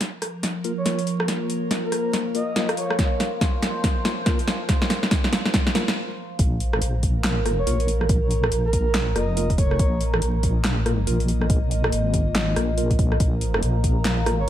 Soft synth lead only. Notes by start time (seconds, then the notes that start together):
0.78 C#5
1.84 A#4
2.34 D#5
2.77 C#5
7.58 C#5
8.65 A#4
9.16 D#5
9.58 C#5
14.39 C#5